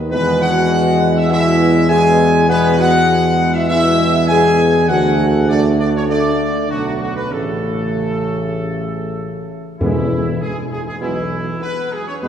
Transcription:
Already playing: tuba D#2
0.10 tuba E2, trombone section B2 G#3, french horn section B3, trumpet section B4
0.42 french horn section F#4, trumpet section F#5
1.16 french horn section E4, trumpet section E5
1.30 trombone section B2 G#3, french horn section E4, trumpet section E5
1.89 trombone section B2 G#3, french horn section G#4, trumpet section G#5
2.48 trombone section B2 G#3, french horn section B3, trumpet section B4
2.78 french horn section F#4, trumpet section F#5
3.54 french horn section E4, trumpet section E5
3.68 trombone section B2 G#3, french horn section E4, trumpet section E5
4.28 trombone section B2 G#3, french horn section G#4, trumpet section G#5
4.88 tuba D2, trombone section D3 A3, french horn section F#4, trumpet section F#5
5.48 trombone section D3 A3, french horn section D4, trumpet section D5
5.80 french horn section D4, trumpet section D5
5.95 french horn section C#4, trumpet section C#5
6.08 trombone section D3 A3, french horn section D4, trumpet section D5
6.69 tuba B1, trombone section D3 A3, french horn section F#3, trumpet section F#4
7.01 french horn section F#3, trumpet section F#4
7.16 french horn section B3, trumpet section B4
7.30 tuba A1, trombone section C#3 A3, french horn section A3, trumpet section A4
9.80 timpani E2, tuba E2, trombone section B2 G#3, french horn section E3, trumpet section E4
10.41 french horn section G#3, trumpet section G#4
10.72 french horn section G#3, trumpet section G#4
10.87 french horn section G#3, trumpet section G#4
11.01 tuba B1, trombone section B2 G#3, french horn section E3, trumpet section E4
11.62 french horn section B3, trumpet section B4
11.92 french horn section G#3, trumpet section G#4
12.07 french horn section C#4, trumpet section C#5
12.22 tuba E2, trombone section B2 G#3, french horn section B3, trumpet section B4

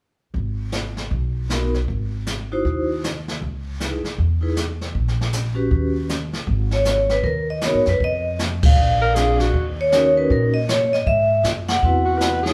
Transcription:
0.34 upright bass G#1, brush sweep, kick
0.72 snare, hi-hat pedal
0.97 snare
1.11 upright bass B1, brush sweep, kick
1.49 vibraphone B3 D#4 F#4 A#4, snare, hi-hat pedal
1.74 snare
1.88 upright bass G#1, brush sweep, kick
2.26 snare, hi-hat pedal
2.52 vibraphone D#4 E4 F#4 C5
2.65 upright bass D#2, brush sweep, kick
3.04 snare, hi-hat pedal
3.28 snare
3.41 upright bass C#2, brush sweep, kick
3.80 vibraphone D#4 E4 G#4 B4, snare, hi-hat pedal
4.03 muted upright bass stroke, snare
4.18 upright bass E2, brush sweep, kick
4.41 vibraphone D#4 E4 G#4 B4
4.56 snare, hi-hat pedal
4.81 snare
4.95 upright bass A#1, brush sweep, kick
5.08 snare
5.21 snare
5.33 snare, hi-hat pedal
5.54 vibraphone C#4 F#4 G4 B4
5.71 upright bass D#2, brush sweep, kick
6.09 snare, hi-hat pedal
6.32 muted upright bass stroke, snare
6.47 upright bass G#1, brush sweep, kick
6.71 vibraphone C#5, snare
6.85 snare, hi-hat pedal
7.09 vibraphone B4, snare
7.23 upright bass D#2, vibraphone A#4, brush sweep, kick
7.50 vibraphone D#5
7.61 vibraphone B3 D#4 F#4 A#4, snare, hi-hat pedal
7.66 vibraphone C#5
7.74 upright bass G#2
7.85 upright bass F#2, vibraphone B4, snare
8.00 upright bass F2, vibraphone D#5, brush sweep, kick
8.39 snare, hi-hat pedal
8.63 upright bass A1, vibraphone F5, kick, ride
8.76 upright bass A#1, brush sweep
9.02 tenor saxophone A#4
9.15 vibraphone C4 D4 F4 G#4, tenor saxophone G#4, snare, hi-hat pedal
9.39 tenor saxophone F#4, snare
9.54 upright bass D#2, brush sweep, kick
9.81 vibraphone C#5
9.92 vibraphone C#4 D#4 F#4 A#4, snare, hi-hat pedal
10.17 vibraphone B4
10.30 upright bass A#2, vibraphone A#4, brush sweep, kick
10.54 vibraphone D#5
10.68 vibraphone C#5, snare, hi-hat pedal
10.93 vibraphone D#5, snare
11.06 upright bass G#2, vibraphone E5, brush sweep, kick
11.43 upright bass F#2, snare, hi-hat pedal
11.69 vibraphone F#5, snare
11.83 upright bass E2, vibraphone C4 E4 F#4 B4, brush sweep, kick
12.05 tenor saxophone F#4
12.18 tenor saxophone B4, snare, hi-hat pedal
12.43 vibraphone D#4 E4 G#4 C#5, tenor saxophone G#4, snare

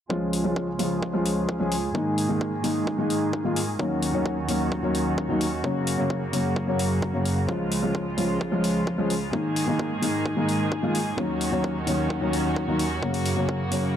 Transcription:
0.10 string section C#2 C#3 F4 G#4, grand piano F3 G#3 C#4 F4, kick
0.33 open hi-hat
0.44 grand piano F3 G#3 C#4 F4
0.56 kick
0.79 grand piano F3 G#3 C#4 F4, open hi-hat
1.02 kick
1.13 grand piano F3 G#3 C#4 F4
1.26 open hi-hat
1.49 kick
1.59 grand piano F3 G#3 C#4 G#4
1.72 open hi-hat
1.94 string section G#2 D#3 A#3, grand piano D#3 G#3 A#3 D#4, kick
2.18 open hi-hat
2.29 grand piano D#3 G#3 A#3 D#4
2.41 kick
2.63 grand piano D#3 G#3 A#3 D#4, open hi-hat
2.87 kick
2.98 grand piano D#3 G#3 A#3 D#4
3.10 open hi-hat
3.33 kick
3.44 grand piano D#3 G#3 A#3 F4
3.56 open hi-hat
3.79 string section D#2 D#3 C#4 F#4, grand piano D#3 F#3 A#3 C#4, kick
4.02 open hi-hat
4.13 grand piano D#3 F#3 A#3 C#4
4.26 kick
4.48 grand piano D#3 F#3 A#3 C#4, open hi-hat
4.72 kick
4.83 grand piano D#3 F#3 A#3 C#4
4.95 open hi-hat
5.18 kick
5.29 grand piano D#3 F#3 A#3 D#4
5.41 open hi-hat
5.63 string section F#2 C#3 A#3, grand piano C#3 F#3 A#3 C#4, kick
5.87 open hi-hat
5.98 grand piano C#3 F#3 A#3 C#4
6.10 kick
6.33 grand piano C#3 F#3 A#3 C#4, open hi-hat
6.56 kick
6.67 grand piano C#3 F#3 A#3 C#4
6.79 open hi-hat
7.02 kick
7.13 grand piano C#3 F#3 A#3 C#4
7.25 open hi-hat
7.48 string section C#2 G#3 F4, grand piano F3 G#3 C#4 F4, kick
7.72 open hi-hat
7.83 grand piano F3 G#3 C#4 F4
7.95 kick
8.17 grand piano F3 G#3 C#4 F4, open hi-hat
8.41 kick
8.52 grand piano F3 G#3 C#4 F4
8.64 open hi-hat
8.87 kick
8.98 grand piano F3 G#3 C#4 G#4
9.10 open hi-hat
9.32 string section G#2 D#3 A#3 G#4, grand piano D#3 G#3 A#3 D#4, kick
9.56 open hi-hat
9.67 grand piano D#3 G#3 A#3 D#4
9.79 kick
10.02 grand piano D#3 G#3 A#3 D#4, open hi-hat
10.26 kick
10.36 grand piano D#3 G#3 A#3 D#4
10.49 open hi-hat
10.72 kick
10.83 grand piano D#3 G#3 A#3 F4
10.95 open hi-hat
11.17 string section D#2 D#3 C#4 F#4, grand piano D#3 F#3 A#3 C#4, kick
11.41 open hi-hat
11.52 grand piano D#3 F#3 A#3 C#4
11.64 kick
11.87 grand piano D#3 F#3 A#3 C#4, open hi-hat
12.10 kick
12.21 grand piano D#3 F#3 A#3 C#4
12.33 open hi-hat
12.56 kick
12.67 grand piano D#3 F#3 A#3 D#4
12.79 open hi-hat
13.02 string section F#2 C#3 A#3, grand piano C#3 F#3 A#3 C#4, kick
13.14 open hi-hat
13.26 open hi-hat
13.37 grand piano C#3 F#3 A#3 C#4
13.49 kick
13.71 grand piano C#3 F#3 A#3 C#4, open hi-hat

